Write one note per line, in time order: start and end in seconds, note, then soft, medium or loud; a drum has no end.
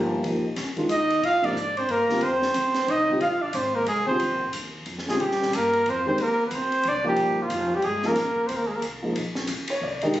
0.00 0.22 G1 medium
0.00 0.23 F3 medium
0.00 0.24 A#3 medium
0.00 0.24 D#4 medium
0.00 0.24 G4 medium
0.23 0.55 A#1 medium
0.23 0.42 F3 soft
0.23 0.43 A#3 soft
0.23 0.43 D#4 soft
0.23 0.43 G4 medium
0.23 ride soft
0.56 0.88 D2 medium
0.56 snare soft
0.56 ride medium
0.77 0.88 D#3 medium
0.77 0.89 G#3 medium
0.77 0.89 D4 medium
0.77 0.89 F4 medium
0.77 kick soft
0.77 ride soft
0.89 1.21 D#2 medium
0.89 1.27 D#5 medium
0.89 hi-hat pedal soft
0.89 ride medium
0.93 1.26 D#4 medium
1.10 ride soft
1.22 1.54 A#2 medium
1.22 1.46 F4 medium
1.22 1.46 F5 medium
1.22 ride medium
1.42 1.54 C3 medium
1.42 1.54 F3 medium
1.42 1.54 A#3 medium
1.42 1.80 D4 medium
1.42 1.55 D#4 medium
1.42 1.79 D5 medium
1.42 kick medium
1.42 ride medium
1.55 1.87 G#2 medium
1.55 hi-hat pedal medium
1.77 1.91 C4 medium
1.77 1.93 C5 medium
1.77 ride soft
1.89 2.21 G2 medium
1.89 2.23 A#3 medium
1.89 2.25 A#4 medium
1.89 ride soft
2.09 2.21 D3 medium
2.09 2.21 G3 medium
2.09 2.21 C4 medium
2.09 2.22 F4 medium
2.09 snare soft
2.21 2.54 F2 medium
2.21 2.90 C4 medium
2.21 2.92 C5 medium
2.21 ride medium
2.42 snare soft
2.54 2.87 D2 medium
2.54 hi-hat pedal medium
2.54 ride medium
2.74 snare soft
2.74 ride soft
2.88 3.20 C2 medium
2.88 3.20 D#4 medium
2.88 3.22 D#5 medium
2.88 ride soft
3.09 3.20 D3 medium
3.09 3.21 G3 medium
3.09 3.21 C4 medium
3.09 3.21 F4 medium
3.21 3.53 A#1 medium
3.21 3.43 F4 medium
3.21 3.44 F5 medium
3.21 ride medium
3.42 3.55 D4 medium
3.42 3.57 D5 medium
3.53 3.86 G#1 medium
3.53 3.75 C4 medium
3.53 3.77 C5 medium
3.53 hi-hat pedal medium
3.53 ride medium
3.74 3.86 A#3 medium
3.74 3.87 A#4 medium
3.86 4.19 C2 medium
3.86 4.05 G#3 medium
3.86 4.06 G#4 medium
3.86 ride medium
4.06 4.19 D3 medium
4.06 4.20 G3 medium
4.06 4.49 C4 medium
4.06 4.50 C5 medium
4.06 kick medium
4.10 4.20 C4 medium
4.10 4.20 F4 medium
4.20 4.31 D2 medium
4.20 ride medium
4.31 4.42 A#1 soft
4.43 4.53 G#1 medium
4.53 4.85 D#2 medium
4.53 hi-hat pedal medium
4.53 ride medium
4.86 5.18 F2 medium
4.86 ride soft
4.98 snare soft
5.08 5.19 D3 soft
5.08 5.19 G3 soft
5.08 5.22 G#3 medium
5.08 5.19 C4 soft
5.08 5.20 F4 medium
5.08 5.22 G#4 medium
5.08 snare soft
5.20 5.51 A#2 medium
5.20 5.57 G3 medium
5.20 5.57 G4 medium
5.20 ride soft
5.31 snare soft
5.42 snare soft
5.53 5.85 G2 medium
5.53 5.91 A#3 medium
5.53 5.92 A#4 medium
5.53 hi-hat pedal medium
5.53 ride medium
5.73 ride soft
5.85 6.17 F2 medium
5.85 6.07 C4 medium
5.85 ride soft
5.90 6.08 C5 medium
6.06 6.17 D#3 medium
6.06 6.17 G#3 medium
6.06 6.24 C4 medium
6.06 6.17 D4 medium
6.06 6.18 G4 medium
6.06 6.24 C5 medium
6.18 6.50 D#2 medium
6.18 ride medium
6.22 6.47 A#3 medium
6.22 6.46 A#4 medium
6.46 6.57 B3 medium
6.46 6.56 B4 medium
6.51 6.83 D2 medium
6.51 6.90 C5 medium
6.51 hi-hat pedal soft
6.51 ride medium
6.55 6.90 C4 medium
6.72 ride soft
6.83 7.16 C2 medium
6.83 ride soft
6.88 7.07 D4 medium
6.88 7.07 D5 medium
7.04 7.48 F3 medium
7.04 7.43 G3 medium
7.04 7.48 A#3 medium
7.04 7.48 D#4 medium
7.04 7.48 G4 medium
7.08 7.44 G4 medium
7.16 7.28 A#1 medium
7.16 ride soft
7.28 7.39 G1 medium
7.37 7.49 D#1 medium
7.37 kick soft
7.41 7.76 F3 medium
7.41 7.76 F4 medium
7.50 7.82 F1 medium
7.50 hi-hat pedal soft
7.50 ride medium
7.70 kick soft
7.75 7.90 G3 medium
7.75 7.86 G4 medium
7.82 8.16 G1 medium
7.82 8.08 G#4 medium
7.82 ride soft
7.88 8.09 G#3 medium
8.03 8.15 F3 medium
8.03 8.15 A#3 soft
8.03 8.15 D#4 medium
8.03 8.16 G#4 medium
8.03 8.48 A#4 medium
8.03 snare soft
8.07 8.51 A#3 medium
8.16 8.48 A#1 medium
8.16 snare soft
8.16 ride medium
8.36 kick soft
8.47 8.82 D#2 medium
8.47 8.59 C4 medium
8.47 8.58 C5 medium
8.47 hi-hat pedal medium
8.47 ride medium
8.56 8.69 A#3 medium
8.56 8.69 A#4 medium
8.67 8.77 G#3 medium
8.67 8.77 G#4 medium
8.76 8.82 A#3 soft
8.76 8.82 A#4 medium
8.82 9.14 C2 medium
8.82 hi-hat pedal soft
8.82 ride medium
9.02 9.14 F3 medium
9.02 9.14 A#3 soft
9.02 9.15 D#4 medium
9.02 9.15 G#4 medium
9.15 9.47 A#1 medium
9.15 ride medium
9.35 snare soft
9.47 9.80 D2 medium
9.47 hi-hat pedal medium
9.47 ride medium
9.68 9.82 C#5 medium
9.68 ride medium
9.81 10.13 C2 medium
9.81 10.02 D5 medium
10.01 10.13 D#3 medium
10.01 10.13 G#3 medium
10.01 10.13 D4 medium
10.01 10.14 G4 medium
10.01 10.14 D#5 medium
10.01 ride soft
10.14 10.20 A#1 medium
10.14 ride medium